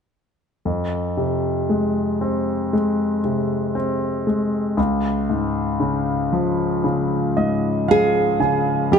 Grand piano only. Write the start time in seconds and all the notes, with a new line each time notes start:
0.65 F2
1.17 C3
1.69 G#3
2.21 C4
2.73 G#3
3.24 C3
3.75 C4
4.27 G#3
4.77 C#2
5.30 G#2
5.80 C#3
6.32 F3
6.84 C#3
7.37 G#2 D#5
7.88 F3 F5
8.40 C#3 G#5
8.92 F2